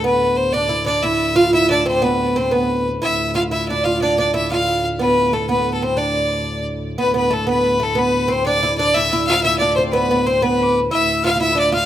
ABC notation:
X:1
M:6/8
L:1/16
Q:3/8=121
K:Ddor
V:1 name="Recorder"
z12 | z12 | z12 | z12 |
z12 | z12 | z12 | b2 b2 a2 b6 |
b4 c'2 d'4 d'2 | e'2 e'4 e'2 d'2 c'2 | b4 c'2 b2- b/2 d'2 z3/2 | e'4 f'2 e'2 d'2 f'2 |]
V:2 name="Fiddle"
B4 c2 d4 d2 | e4 f2 e2 d2 c2 | B4 c2 B4 z2 | e4 f2 e2 d2 f2 |
d2 d2 e2 f4 z2 | B4 A2 B3 A c2 | d8 z4 | B2 B2 A2 B4 A2 |
B4 c2 d4 d2 | e4 f2 e2 d2 c2 | B4 c2 B4 z2 | e4 f2 e2 d2 f2 |]
V:3 name="Oud"
B,6 D2 E2 D2 | E4 F2 E2 D2 C2 | B,4 C2 B,4- B,/2 z3/2 | E4 F2 E2 D2 F2 |
D2 D2 E2 F4- F/2 z3/2 | B,4 A,2 B,4 C2 | D8 z4 | B,2 B,2 A,2 B,4 A,2 |
B,4 C2 D2 E2 D2 | E2 E2 F2 E2 D2 C2 | B,2 B,2 C2 B,4- B,/2 z3/2 | E4 F3/2 F/2 E3/2 E/2 D2 F2 |]
V:4 name="Pipe organ" clef=bass
[D,,A,,]12- | [D,,A,,]12- | [D,,A,,]12 | [D,,A,,]12- |
[D,,A,,]12- | [D,,A,,]12- | [D,,A,,]12 | [D,,A,,]12- |
[D,,A,,]12- | [D,,A,,]12- | [D,,A,,]12 | [D,,A,,]12 |]